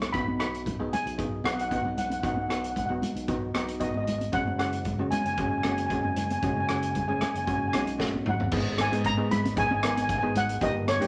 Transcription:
Already playing: B1
0.02 cross-stick, closed hi-hat, high conga
0.13 B1 B3 D#4 F#4 B5, kick, closed hi-hat
0.28 high conga
0.40 B3 D#4 F#4 B5, cross-stick, closed hi-hat
0.54 closed hi-hat
0.66 kick, closed hi-hat, low conga
0.79 B1 B3 D#4 G#4
0.93 G#5, closed hi-hat, high conga, low conga
1.05 B1, closed hi-hat
1.18 B3 D#4 G#4, kick, closed hi-hat
1.44 B1 B3 D#4 F#4 F#5, cross-stick, closed hi-hat, high conga
1.54 F#5
1.59 F#5, closed hi-hat
1.68 B3 D#4 F#4 F#5, kick, closed hi-hat
1.75 F#5
1.83 B1 F#5, high conga
1.97 F#5, closed hi-hat, low conga
2.05 F#5
2.10 F#5, closed hi-hat, high conga
2.20 B1 B3 D#4 F#4 F#5, kick, closed hi-hat
2.27 F#5
2.35 F#5, high conga
2.42 F#5
2.48 B3 D#4 F#4 F#5, cross-stick, closed hi-hat
2.56 F#5
2.64 F#5, closed hi-hat
2.70 F#5
2.76 F#5, kick, closed hi-hat, low conga
2.86 B1 B3 F#5
2.90 D#4 F#4
3.02 closed hi-hat, high conga, low conga
3.15 B1, closed hi-hat
3.28 B3 D#4 F#4, kick, closed hi-hat
3.54 B1 B3 D#4 F#4, cross-stick, closed hi-hat, high conga
3.68 closed hi-hat
3.80 B3 D#4 F#4 D#5, kick, closed hi-hat
3.89 D#5
3.94 G#1 D#5, high conga
4.04 D#5, closed hi-hat, low conga
4.12 D#5
4.18 D#5, closed hi-hat, high conga
4.32 F#1 G#3 C#4 F#4 F#5, kick, closed hi-hat
4.47 high conga
4.58 G#3 C#4 F#4 F#5, cross-stick, closed hi-hat
4.73 closed hi-hat
4.85 kick, closed hi-hat, low conga
4.98 F#1 G#3 C#4 F#4
5.11 G#5, closed hi-hat, high conga, low conga
5.20 G#5
5.24 F#1 G#5, closed hi-hat
5.34 G#5, closed hi-hat
5.38 G#3 C#4 F#4 G#5, kick
5.49 G#5
5.58 G#5
5.63 F#1 G#3 C#4 F#4 G#5, cross-stick, closed hi-hat, high conga
5.72 G#5
5.78 G#5, closed hi-hat
5.87 G#5, kick, closed hi-hat
5.91 G#3 C#4 F#4 G#5
6.03 F#1 G#5, high conga
6.10 G#5
6.16 G#5, closed hi-hat, low conga
6.24 G#5
6.30 G#5, closed hi-hat, high conga
6.39 F#1 G#5, kick, closed hi-hat
6.43 G#3 C#4 F#4 G#5
6.54 G#5, high conga
6.60 G#5
6.67 G#3 C#4 F#4 G#5, cross-stick, closed hi-hat
6.76 G#5
6.83 G#5, closed hi-hat
6.91 G#5, closed hi-hat
6.95 kick, low conga
6.99 G#5
7.08 F#1 G#3 C#4 G#4 G#5
7.13 G#5
7.21 G#5, cross-stick, closed hi-hat, high conga, low conga
7.30 G#5
7.34 F#1 G#5, closed hi-hat
7.45 G#3 C#4 F#4 G#5, kick, closed hi-hat
7.53 G#5
7.60 G#5
7.68 G#5
7.73 B1 G#3 C#4 F#4 G#5, cross-stick, closed hi-hat, high conga
7.87 closed hi-hat
7.98 A#1 G#3 C#4 F#4, kick, snare
8.15 high conga
8.25 G#1, mid tom, low conga
8.29 F#5
8.40 floor tom, high conga
8.51 G#1 B3 D#4 G#4, kick, crash
8.78 G#5, cross-stick, closed hi-hat, high conga
8.92 G#2 B3 D#4 G#4, closed hi-hat
9.04 A#5, kick, closed hi-hat
9.17 B3 D#4 G#4
9.31 B5, closed hi-hat, high conga, low conga
9.44 G#1, closed hi-hat, high conga
9.56 B3 D#4 G#4 G#5, kick, closed hi-hat
9.67 G#1 G#5
9.71 G#5, high conga
9.80 B3 D#4 A#4 G#5, cross-stick, closed hi-hat
9.88 G#5
9.95 G#5, closed hi-hat, high conga
10.02 G#5
10.09 G#5, kick, closed hi-hat
10.18 G#1 G#5
10.23 B3 D#4 G#4
10.35 F#5, closed hi-hat, low conga
10.49 closed hi-hat
10.61 G1 A#3 D#4 G4 D#5, kick, closed hi-hat
10.88 C#5, cross-stick, closed hi-hat, high conga
11.00 G2 A#3 D#4 G4, closed hi-hat

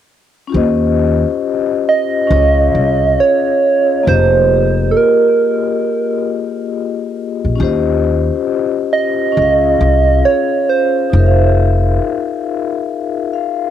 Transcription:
0.48 C#4 F4
0.53 D#2 G4 C5
0.57 D#5
1.89 D#5
2.27 C#2 C#4 F4
2.31 G#4 C#5
2.36 D#5
2.43 F5
2.75 C2
3.20 C#5
4.03 A#3 F4
4.07 F1 G4 G#4 C5
4.12 D#5
4.91 A4
4.97 A#4
7.45 A#1
7.56 C#4 F4
7.60 D#2 G4 C5
7.65 D#5
8.93 D#5
9.32 C#4 F4
9.37 C#2 G#4
9.42 F5
9.81 C2
10.25 C#5
10.69 C5
11.10 F1 D#4 F4
11.15 G#4 A#4
11.19 E5
11.26 F5
13.33 F5

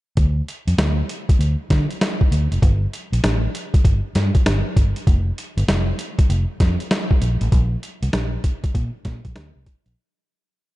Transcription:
0.17 D2, kick, closed hi-hat
0.48 closed hi-hat
0.67 F2, closed hi-hat
0.78 D2, snare, closed hi-hat
1.09 closed hi-hat
1.29 kick, closed hi-hat
1.39 D2, closed hi-hat
1.70 D3, kick, snare, closed hi-hat
1.91 closed hi-hat
2.01 snare, closed hi-hat
2.21 kick
2.31 D2, closed hi-hat
2.51 F1, closed hi-hat
2.62 G1, kick, closed hi-hat
2.93 closed hi-hat
3.12 A#1, closed hi-hat
3.24 A1, snare, closed hi-hat
3.55 closed hi-hat
3.74 kick, closed hi-hat
3.84 G1, kick, closed hi-hat
4.15 G2, snare, closed hi-hat
4.35 kick, closed hi-hat
4.46 G1, snare, closed hi-hat
4.76 G1, kick, closed hi-hat
4.96 closed hi-hat
5.07 F1, kick, closed hi-hat
5.38 closed hi-hat
5.57 G1, closed hi-hat
5.68 F1, snare, closed hi-hat
5.99 closed hi-hat
6.19 kick, closed hi-hat
6.29 F1, closed hi-hat
6.60 F2, kick, snare, closed hi-hat
6.80 closed hi-hat
6.91 snare, closed hi-hat
7.11 kick
7.22 A#1, closed hi-hat
7.41 A1, closed hi-hat
7.52 A#1, kick, closed hi-hat
7.83 closed hi-hat
8.02 C2, closed hi-hat
8.13 A#1, snare, closed hi-hat
8.44 kick, closed hi-hat
8.64 kick, closed hi-hat
8.75 A#2, kick, closed hi-hat
9.05 A#2, kick, snare, closed hi-hat
9.25 A#1, kick, closed hi-hat
9.36 D2, snare, closed hi-hat
9.56 C2
9.66 kick, closed hi-hat
9.86 A#1, closed hi-hat

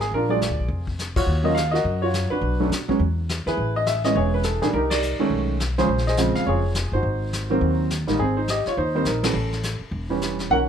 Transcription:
0.01 G#4, snare
0.11 A#1 D4 F4 A#4, brush sweep
0.29 F#3 G#3 D4 F4 G#4 D5
0.42 snare, hi-hat pedal
0.50 D2
0.59 B1
0.68 F1, brush sweep
0.87 kick
0.99 snare, hi-hat pedal
1.16 E2 F4 F#4 C#5, kick, crash
1.26 D#2, brush sweep
1.44 F#3 A#3 C#4 F4 D#5
1.55 F5, snare, hi-hat pedal
1.71 F#4 A#4 D#5, snare
1.84 F#2, brush sweep
2.02 F4 F#4 C#5
2.14 snare, hi-hat pedal
2.30 D4 F#4 B4, muted upright bass stroke
2.41 B1, brush sweep
2.60 F#3 A3 C#4 D4
2.69 B2, snare, hi-hat pedal
2.88 F#3 G#3 B3 C#4, kick
2.99 E2, brush sweep
3.29 snare, hi-hat pedal
3.46 E2 E4 G#4 B4, snare
3.57 A1, brush sweep
3.76 D#5
3.86 E5, snare, hi-hat pedal
4.04 E3 G#3 B3 C#4 D#5, snare
4.15 E1 E4 G#4 C#5, brush sweep
4.34 B4
4.43 A4, snare, hi-hat pedal
4.62 A1 D#3 G3 A#3 D4 G#4, snare
4.73 C2 D#4 G4 A#4, brush sweep
4.90 G4 A#4 D5, snare, ride
5.02 hi-hat pedal
5.19 D#3 G#3 A3 C#4, muted upright bass stroke
5.30 B1, brush sweep
5.60 snare, hi-hat pedal
5.78 C#3 F3 G#3 C#4 F4 G#4 C5, snare
5.88 A#1, brush sweep
5.98 snare
6.07 G#4 C5 D#5, snare
6.17 C#3 F3 G#3 C4, snare, hi-hat pedal
6.35 F5, muted upright bass stroke, snare
6.46 F1 F4 G#4 C#5, brush sweep
6.75 snare, hi-hat pedal
6.92 G1 D#4 F#4 C5
7.03 G#1, brush sweep
7.33 snare, hi-hat pedal
7.50 D#3 F#3 A#3 C4
7.61 D#2, brush sweep
7.90 snare, hi-hat pedal
8.07 A1 G#2 D#3 G3 A#3 D#4, snare
8.19 G#1 C4 G#4, brush sweep
8.37 D#4 C5
8.48 G4 D#5, snare, hi-hat pedal
8.65 F4 C#5, muted upright bass stroke, snare
8.77 D#2 D#4 C5, brush sweep
8.95 D#3 G3 A#3 C4 D#4 C5
9.05 A#1 D#4 A#4, snare, hi-hat pedal
9.23 E3 G3 B3 C#4 A4, snare, ride
9.33 A1, brush sweep
9.52 snare
9.63 snare, hi-hat pedal
9.81 muted upright bass stroke
9.91 E1, brush sweep
10.09 E3 G3 B3 C#4
10.22 snare, hi-hat pedal
10.39 snare
10.50 B1 D#3 F#3 A#3 C#4 A#4 F#5, brush sweep

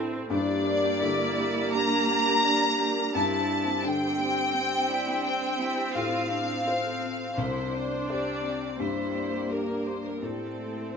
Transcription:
Already playing: A2 C4 E4 A4 C5 E5 A5
0.12 C5
0.30 G2 A#3 D4 G4 A#4 D5
0.65 D5
0.83 G4
1.01 D3 E4
1.19 A#4
1.37 G4
1.74 D4 G4 A#5
2.10 G5
2.27 G4
2.44 D5
2.62 D5
2.79 G4
2.96 A#4
3.14 G2 C4 E4 C5 A5
3.49 C5
3.66 C4
3.84 D3 D4 G5
4.01 G4
4.18 C4
4.52 C4
4.88 E4 D5
5.07 C4
5.24 D4 C5 G5
5.42 C5
5.58 C4 E4
5.77 G4
5.94 A2 C4 F4 A4 F5
6.29 D4 C5
6.48 F4
6.65 C4 F4 C5
6.84 A4
7.02 F4
7.37 C2 C4 D4 E4 G4 C5 D5
7.73 D4 D5
7.91 C4
8.08 C4 G4 C5 D5
8.26 C5
8.43 C4
8.62 G4
8.79 G2 A#3 E4 G4 C5
9.15 D5
9.33 G4
9.50 D4 G4 A#4
9.69 A#4
9.86 G4 C5
10.06 A#4
10.22 A2 A3 C4 E4 A4 C5
10.59 A5
10.76 A4

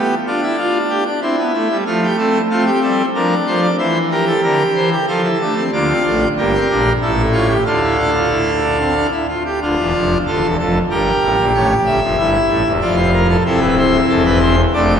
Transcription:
Already playing: B3 G4
0.27 D4 F4
0.42 E4
0.58 F4
0.90 G4
1.06 D4
1.22 C4 E4
1.38 B3
1.54 A3
1.70 G3
1.86 F3 A3 F4
2.03 G4
2.18 C4 A4
2.50 A3 C4 F4
2.66 G4
2.82 G3 A4
3.15 F3 D4 A#4
3.47 F3 C5
3.62 D5
3.78 E3 E4 C5
4.11 G4 A#4
4.27 A4
4.43 D3 A#4
4.75 E3 C5
4.92 G4
5.08 F3 F4 A4
5.24 E4
5.41 A3 D4
5.57 C4
5.72 D2 D3 A#3 F4 D5
5.89 C4
6.05 A1 A2 D4
6.37 G1 G2 A#3 G4 A#4
6.55 C4
6.70 A#1 A#2 D4
7.02 A1 A2 E4 A4
7.33 F4 C#5
7.50 G4
7.66 D2 D3 F4 A4 F5
7.82 E4
7.98 D4
8.15 F4
8.30 E4
8.63 D4
8.79 C4
8.95 D4
9.12 E4
9.28 F4
9.46 G4
9.61 D1 D2 D4 F4
9.78 E1 E2
9.94 F1 F2
10.27 D1 D2 F4 A4
10.43 E1 E2
10.59 F1 F2 A4
10.90 G1 G2 G4 A#4
11.22 A1 A2
11.38 A#1 A#2
11.54 A1 A2 C#5
11.85 G1 G2 E5
12.02 F1 F2
12.18 G1 G2 E4
12.49 A1 A2
12.66 E1 E2
12.81 F1 F2 F4 D5
12.97 C5
13.13 A#4
13.30 A4
13.46 C1 C2 C4 E4 A4
13.61 B4
13.77 C5
14.09 E1 E2 A4
14.25 B4
14.41 C5
14.74 F1 F2 A3 D4 D5

